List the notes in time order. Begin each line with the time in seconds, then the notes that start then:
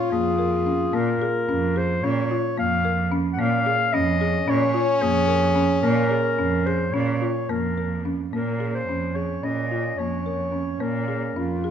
Already playing: F4 C#5
0.11 F2 A#3 G#4
0.39 A#4
0.66 C#4
0.93 A#2 A#3 A#4
1.22 G#4
1.49 F2 C#4
1.76 G#4 C5
2.03 A#2 C#4 C#5
2.31 F4
2.58 F2 A#3 F5
2.85 A#4
3.12 C#4
3.34 F#5
3.39 A#2 A#3 C#4 F5
3.66 G#4
3.93 F2 C#4 D#5
4.21 G#4
4.48 A#2 C#4 C#5
4.74 F4
5.02 F2 A#3 G#4
5.28 A#4
5.56 C#4
5.83 A#2 A#3 A#4
6.11 G#4
6.38 F2 C#4
6.66 G#4 C5
6.93 A#2 C#4 C#5
7.22 F4
7.48 F2 A#3 A#4
7.78 A#4
8.05 C#4
8.33 A#2 A#3 C#4 A#4
8.60 G#4
8.75 C5
8.88 F2 C#4
9.15 G#4 C#5
9.43 A#2 C#4 D#5
9.71 F4
9.98 F2 A#3 C#5
10.26 A#4
10.52 C#4
10.80 A#2 A#3 A#4
11.08 G#4
11.36 F2 C#4 F4
11.64 G#4